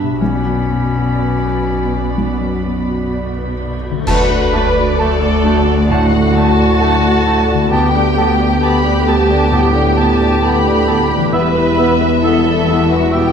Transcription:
Already playing: double bass section G1, harp G2 G4 E5, cello section G2, felt piano G2 G3 B3 G4 B4 E5, viola section B3 G4, clarinet D4, violin section E5 B5
0.02 harp B2
0.07 harp B3
0.11 harp F#4
0.16 double bass section B1, cello section B2, viola section F#4, violin section D5 B5, harp D6
0.20 felt piano B1, viola section B3, clarinet C#4
0.47 felt piano F#2
0.70 felt piano B3
0.97 felt piano F#4
1.21 felt piano B4
1.45 felt piano B4
1.70 felt piano B4
1.93 felt piano F#4
2.17 felt piano B1
2.41 felt piano F#2
2.65 felt piano B3
2.90 felt piano F#4
3.13 felt piano D5
3.36 felt piano B4
3.61 felt piano D5
3.85 felt piano F#4
3.90 harp D3
3.95 harp A3
3.99 harp F#4
4.04 cello section D2, viola section F#3 D4, french horn section A3, violin section B4, harp D5, cor anglais A5, concert bass drum, crash
4.08 felt piano D2, double bass section D2, clarinet A3, french horn section A4, violin section F#5
4.30 viola section A3 F#4, felt piano D5
4.53 viola section F#3 D4, clarinet A3, felt piano A3, violin section D5, cor anglais A5
4.75 viola section A3 F#4, felt piano D5
4.97 viola section F#3 D4, clarinet A3, violin section A4, felt piano A4, cor anglais A5
5.21 viola section A3 F#4, felt piano D5
5.44 viola section F#3 D4, clarinet A3, felt piano F#4, cor anglais A5
5.66 viola section A3 F#4, felt piano D5
5.88 felt piano A2, viola section F#3 D4, clarinet A3, violin section F#4 F#5, cor anglais A5
6.10 viola section A3 F#4, felt piano D5
6.34 viola section F#3 D4, felt piano A3, clarinet A3, violin section A5, cor anglais A5
6.56 viola section A3 F#4, felt piano D5
6.79 viola section F#3 D4, clarinet A3, felt piano A4, cor anglais A5
7.01 viola section A3 F#4, felt piano D5
7.23 viola section F#3 D4, clarinet A3, felt piano F#4, cor anglais A5
7.47 viola section A3 F#4, felt piano D5
7.54 harp D3
7.58 harp B3
7.63 harp A4
7.67 felt piano D2, viola section G3 B3, french horn section B3 A4, violin section G4, harp D5
7.71 cello section D2, double bass section D2, clarinet B3, violin section G5, cor anglais A5
7.93 viola section A3 D4, felt piano D5
8.16 viola section G3 B3, felt piano B3, clarinet B3, cor anglais A5
8.39 viola section A3 D4, felt piano D5
8.62 viola section G3 B3, clarinet B3, felt piano B4, cor anglais A5, violin section B5
8.84 viola section A3 D4, felt piano D5
9.07 viola section G3 B3, clarinet B3, felt piano A4, cor anglais A5, violin section A5
9.30 viola section A3 D4, felt piano D5
9.52 felt piano A2, viola section G3 B3, clarinet B3, cor anglais A5
9.56 violin section G5
9.74 viola section A3 D4, felt piano D5
9.97 viola section G3 B3, clarinet B3, felt piano B3, cor anglais A5, violin section A5
10.20 viola section A3 D4, felt piano D5
10.42 viola section G3 B3, clarinet B3, felt piano B4, cor anglais A5, violin section B5
10.66 viola section A3 D4, felt piano D5
10.88 viola section G3 B3, clarinet B3, felt piano A4, cor anglais A5
11.10 viola section A3 D4, felt piano D5
11.17 harp E3
11.21 harp B3
11.26 harp E4
11.30 double bass section E1, cello section E2, viola section G3 B3, clarinet B3, french horn section E4, harp B4, violin section B4, cor anglais E5
11.34 felt piano E2, french horn section B3, violin section E5
11.56 viola section E3 G3, felt piano B4
11.78 viola section G3 B3, felt piano B3, clarinet B3, cor anglais E5
12.01 viola section E3 G3, felt piano B4
12.23 viola section G3 B3, clarinet B3, felt piano E4, violin section A4, cor anglais E5
12.45 viola section E3 G3, felt piano B4
12.67 viola section G3 B3, clarinet B3, felt piano E4, cor anglais E5
12.89 viola section E3 G3, violin section F#4, felt piano B4
13.12 felt piano B2, viola section G3 B3, clarinet B3, violin section G4 G5, cor anglais E5

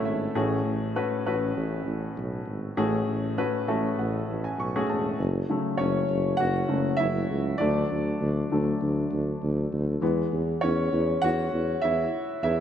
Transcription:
Already playing: grand piano A3 C#4 E4 A4 B4 F#5 A5
0.05 tuba G#1, grand piano E5
0.35 tuba A1, grand piano A2 A3 C#4 F#4 G#4
0.65 tuba A1
0.96 grand piano A3 C#4 F#4 B4
1.26 tuba A1, grand piano A3 C#4 F#4 B4
1.56 tuba A1
1.86 tuba A1
2.17 tuba B1
2.47 tuba G#1
2.77 tuba A1, grand piano A2 A3 C#4 F#4 G#4
3.08 tuba A1
3.38 grand piano A3 C#4 F#4 B4
3.68 tuba A1, grand piano A3 C#4 F#4 A4 E5
3.98 tuba A1, grand piano F#5
4.28 tuba A1
4.44 grand piano G#5
4.58 tuba B1, grand piano C#6
4.75 grand piano A3 C#4 F#4 G#4
4.89 tuba E1, grand piano A5
5.19 tuba F#1
5.49 grand piano C#3 F#3 A3
5.77 tuba F#1, grand piano C#4 C#5
6.09 tuba F#1
6.37 tuba F#1, grand piano F#4 F#5
6.69 tuba F#1, grand piano C#3 F#3 A3
6.97 tuba F#1, grand piano E4 E5
7.30 tuba C#2
7.58 tuba D2, grand piano D3 F#3 A3 D4 D5
7.91 tuba D2
8.21 tuba D2
8.51 tuba D2, grand piano D3 F#3 A3
8.82 tuba D2
9.12 tuba D2
9.42 tuba D2
9.73 tuba D2
10.01 tuba E2, grand piano E3 G#3 B3
10.33 tuba E2
10.61 tuba E2, grand piano C#4 C#5
10.93 tuba E2
11.22 tuba E2, grand piano F#4 F#5
11.53 tuba E2
11.82 tuba E2, grand piano E4 E5
12.43 tuba E2, grand piano E4 E5

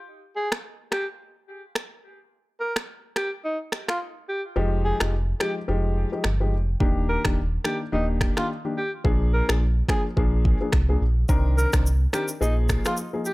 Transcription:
0.36 alto saxophone G#4
0.52 finger snap, cross-stick
0.92 alto saxophone G4, finger snap, cross-stick
1.75 finger snap, cross-stick
2.61 alto saxophone A#4
2.76 finger snap, cross-stick
3.16 alto saxophone G4, finger snap, cross-stick
3.45 alto saxophone D#4
3.72 finger snap, cross-stick
3.88 alto saxophone F4, finger snap, cross-stick
4.29 alto saxophone G4
4.56 sub bass F1, grand piano F3 G#3 D#4 G4
4.85 alto saxophone G#4
5.00 sub bass F1, grand piano F3 G#3 D#4 G4, finger snap, cross-stick
5.40 grand piano F3 G#3 D#4 G4, alto saxophone G4, finger snap, cross-stick
5.68 sub bass F1, grand piano F3 G#3 D#4 G4
6.12 grand piano F3 G#3 D#4 G4
6.24 sub bass G1, finger snap, cross-stick
6.40 grand piano F3 G#3 D#4 G4
6.52 sub bass F1
6.80 sub bass D#1, grand piano D#3 A#3 D4 G4, kick
7.09 alto saxophone A#4
7.24 sub bass D#1, grand piano D#3 A#3 D4 G4, finger snap, kick, cross-stick
7.64 grand piano D#3 A#3 D4 G4, alto saxophone G4, finger snap, cross-stick
7.92 sub bass D#1, grand piano D#3 A#3 D4 G4, alto saxophone D#4
8.21 finger snap, kick, cross-stick
8.36 grand piano D#3 A#3 D4 G4, alto saxophone F4, finger snap, cross-stick
8.65 grand piano D#3 A#3 D4 G4
8.77 alto saxophone G4
9.04 sub bass A#1, grand piano F3 A#3 D4 G#4, kick
9.33 alto saxophone A#4
9.49 sub bass A#1, grand piano F3 A#3 D4 G#4, finger snap, cross-stick
9.88 grand piano F3 A#3 D4 G#4, alto saxophone G#4, finger snap, kick, cross-stick
10.17 sub bass A#1, grand piano F3 A#3 D4 G#4, kick
10.45 kick
10.61 grand piano F3 A#3 D4 G#4
10.72 sub bass C2, finger snap, kick, cross-stick
10.89 grand piano F3 A#3 D4 G#4
11.01 sub bass A#1
11.29 sub bass C2, grand piano D#3 C4 D4 A#4, kick, shaker
11.58 alto saxophone A#4, shaker
11.73 sub bass C2, grand piano D#3 C4 D4 A#4, finger snap, kick, cross-stick, shaker
11.86 shaker
12.13 grand piano D#3 C4 D4 A#4, alto saxophone G4, finger snap, cross-stick, shaker
12.28 shaker
12.41 sub bass A#1, grand piano F3 A#3 D#4 G#4, alto saxophone D#4, shaker
12.69 finger snap, kick, cross-stick, shaker
12.85 grand piano F3 A#3 D#4 G#4, alto saxophone F4, finger snap, cross-stick, shaker
12.97 shaker
13.13 grand piano F3 A#3 D#4 G#4
13.25 alto saxophone G4, shaker

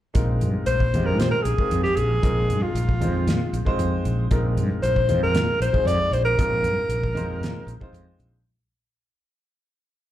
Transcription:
0.14 fretless electric bass A#1, grand piano G#3 C4 D#4 F4 A#4, kick, closed hi-hat
0.41 fretless electric bass G2, closed hi-hat
0.66 fretless electric bass A#1, alto saxophone C5, closed hi-hat
0.80 kick
0.94 fretless electric bass F2, grand piano G#3 C4 D#4 F4 G4, closed hi-hat
1.06 alto saxophone A#4
1.19 fretless electric bass A#2, alto saxophone C5, snare, closed hi-hat
1.31 alto saxophone A#4
1.43 fretless electric bass A#1, alto saxophone G#4, closed hi-hat
1.58 grand piano G#3 C4 D#4 F4 A#4, kick
1.71 fretless electric bass F2, closed hi-hat
1.83 alto saxophone G4, snare
1.96 fretless electric bass A#1, alto saxophone G#4, closed hi-hat
2.21 fretless electric bass A#1, grand piano G#3 C4 D#4 F4 A#4, kick, closed hi-hat
2.49 fretless electric bass G2, closed hi-hat
2.63 alto saxophone F4
2.75 fretless electric bass A#1, closed hi-hat
2.89 kick
3.00 fretless electric bass F2, grand piano G#3 C4 D#4 F4 C5, closed hi-hat
3.27 fretless electric bass A#2, snare, closed hi-hat
3.53 fretless electric bass A#1, closed hi-hat
3.65 grand piano G#3 C4 D#4 F4 C5, kick
3.79 fretless electric bass F2, closed hi-hat
4.05 fretless electric bass A#1, closed hi-hat
4.31 fretless electric bass A#1, grand piano G#3 C4 D#4 F4 A#4, kick, closed hi-hat
4.57 fretless electric bass G2, closed hi-hat
4.82 fretless electric bass A#1, alto saxophone C5, closed hi-hat
4.96 kick
5.08 fretless electric bass F2, grand piano G#3 C4 D#4 F4 C5, closed hi-hat
5.23 alto saxophone A#4
5.34 fretless electric bass A#2, snare, closed hi-hat
5.60 fretless electric bass A#1, alto saxophone C5, closed hi-hat
5.72 grand piano G#3 C4 D#4 F4 G#4, kick
5.85 fretless electric bass F2, alto saxophone D5, closed hi-hat
6.11 fretless electric bass A#1, alto saxophone C5, closed hi-hat
6.25 alto saxophone A#4
6.37 fretless electric bass A#1, grand piano G#3 C4 D#4 F4 A#4, kick, closed hi-hat
6.63 fretless electric bass G2, closed hi-hat
6.89 fretless electric bass A#1, closed hi-hat
7.03 kick
7.14 fretless electric bass F2, grand piano G#3 C4 D#4 F4 C5, closed hi-hat
7.41 fretless electric bass A#2, snare, closed hi-hat
7.67 fretless electric bass A#1, closed hi-hat
7.80 grand piano G#3 C4 D#4 F4 C5, kick
7.93 fretless electric bass F2, closed hi-hat
8.19 fretless electric bass A#1, closed hi-hat

